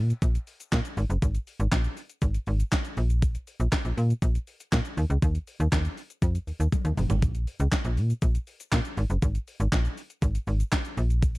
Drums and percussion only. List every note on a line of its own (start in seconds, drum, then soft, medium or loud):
0.10 closed hi-hat medium
0.10 shaker medium
0.22 kick loud
0.22 closed hi-hat medium
0.22 shaker medium
0.35 closed hi-hat medium
0.35 shaker medium
0.47 open hi-hat medium
0.47 shaker soft
0.60 closed hi-hat medium
0.60 shaker medium
0.72 kick loud
0.72 snare loud
0.72 clap loud
0.72 closed hi-hat medium
0.72 shaker medium
0.85 closed hi-hat medium
0.85 shaker medium
0.97 open hi-hat medium
0.97 shaker medium
1.10 closed hi-hat medium
1.10 shaker medium
1.22 kick loud
1.22 closed hi-hat medium
1.22 shaker medium
1.35 closed hi-hat medium
1.35 shaker medium
1.47 open hi-hat medium
1.47 shaker medium
1.60 closed hi-hat medium
1.60 shaker medium
1.72 kick loud
1.72 snare loud
1.72 clap loud
1.72 closed hi-hat medium
1.72 shaker medium
1.84 closed hi-hat soft
1.84 shaker soft
1.97 open hi-hat medium
1.97 shaker medium
2.10 closed hi-hat medium
2.10 shaker medium
2.22 kick loud
2.22 closed hi-hat medium
2.22 shaker medium
2.34 closed hi-hat medium
2.34 shaker medium
2.47 open hi-hat medium
2.47 shaker soft
2.60 closed hi-hat medium
2.60 shaker medium
2.72 kick loud
2.72 snare loud
2.72 clap loud
2.72 closed hi-hat medium
2.72 shaker medium
2.85 closed hi-hat medium
2.85 shaker medium
2.97 open hi-hat medium
2.97 shaker medium
3.10 closed hi-hat medium
3.10 shaker medium
3.22 kick loud
3.22 closed hi-hat medium
3.22 shaker medium
3.35 closed hi-hat medium
3.35 shaker medium
3.47 open hi-hat medium
3.47 shaker medium
3.60 closed hi-hat medium
3.60 shaker medium
3.72 kick loud
3.72 snare loud
3.72 clap loud
3.72 closed hi-hat medium
3.72 shaker medium
3.85 closed hi-hat soft
3.85 shaker soft
3.98 open hi-hat medium
3.98 shaker medium
4.10 closed hi-hat medium
4.10 shaker medium
4.22 kick loud
4.22 closed hi-hat medium
4.22 shaker medium
4.35 closed hi-hat medium
4.35 shaker medium
4.47 open hi-hat medium
4.47 shaker soft
4.60 closed hi-hat medium
4.60 shaker medium
4.72 kick loud
4.72 snare loud
4.72 clap loud
4.72 closed hi-hat medium
4.72 shaker medium
4.85 closed hi-hat medium
4.85 shaker medium
4.97 open hi-hat medium
4.97 shaker medium
5.10 closed hi-hat medium
5.10 shaker medium
5.22 kick loud
5.22 closed hi-hat medium
5.22 shaker medium
5.35 closed hi-hat medium
5.35 shaker medium
5.47 open hi-hat medium
5.47 shaker medium
5.60 closed hi-hat medium
5.60 shaker medium
5.72 kick loud
5.72 snare loud
5.72 clap loud
5.72 closed hi-hat medium
5.72 shaker medium
5.85 closed hi-hat soft
5.85 shaker soft
5.97 open hi-hat medium
5.97 shaker medium
6.10 closed hi-hat medium
6.10 shaker medium
6.22 kick loud
6.22 closed hi-hat medium
6.22 shaker medium
6.35 closed hi-hat medium
6.35 shaker medium
6.47 open hi-hat medium
6.47 shaker soft
6.60 closed hi-hat medium
6.60 shaker medium
6.72 kick loud
6.72 closed hi-hat medium
6.72 high tom medium
6.72 shaker medium
6.85 closed hi-hat medium
6.85 mid tom medium
6.85 shaker medium
6.97 mid tom loud
6.97 open hi-hat medium
6.97 shaker medium
7.10 closed hi-hat medium
7.10 floor tom loud
7.10 shaker medium
7.22 kick loud
7.22 closed hi-hat medium
7.22 shaker medium
7.35 closed hi-hat medium
7.35 shaker medium
7.47 open hi-hat medium
7.47 shaker medium
7.60 closed hi-hat medium
7.60 shaker medium
7.72 kick loud
7.72 snare loud
7.72 clap loud
7.72 closed hi-hat medium
7.72 shaker medium
7.85 closed hi-hat soft
7.85 shaker soft
7.97 open hi-hat medium
7.97 shaker medium
8.10 closed hi-hat medium
8.10 shaker medium
8.22 kick loud
8.22 closed hi-hat medium
8.22 shaker medium
8.35 closed hi-hat medium
8.35 shaker medium
8.47 open hi-hat medium
8.47 shaker soft
8.60 closed hi-hat medium
8.60 shaker medium
8.72 kick loud
8.72 snare loud
8.72 clap loud
8.72 closed hi-hat medium
8.72 shaker medium
8.85 closed hi-hat medium
8.85 shaker medium
8.97 open hi-hat medium
8.97 shaker medium
9.10 closed hi-hat medium
9.10 shaker medium
9.22 kick loud
9.22 closed hi-hat medium
9.22 shaker medium
9.35 closed hi-hat medium
9.35 shaker medium
9.48 open hi-hat medium
9.48 shaker medium
9.60 closed hi-hat medium
9.60 shaker medium
9.72 kick loud
9.72 snare medium
9.72 clap loud
9.72 closed hi-hat medium
9.72 shaker medium
9.85 closed hi-hat soft
9.85 shaker soft
9.97 open hi-hat medium
9.97 shaker medium
10.10 closed hi-hat medium
10.10 shaker medium
10.22 kick loud
10.22 closed hi-hat medium
10.22 shaker medium
10.35 closed hi-hat medium
10.35 shaker medium
10.47 open hi-hat medium
10.47 shaker soft
10.60 closed hi-hat medium
10.60 shaker medium
10.72 kick loud
10.72 snare loud
10.72 clap loud
10.72 closed hi-hat medium
10.72 shaker medium
10.85 closed hi-hat medium
10.85 shaker medium
10.97 open hi-hat medium
10.97 shaker medium
11.10 closed hi-hat medium
11.10 shaker medium
11.22 kick loud
11.22 closed hi-hat medium
11.22 shaker medium
11.35 closed hi-hat medium
11.35 shaker medium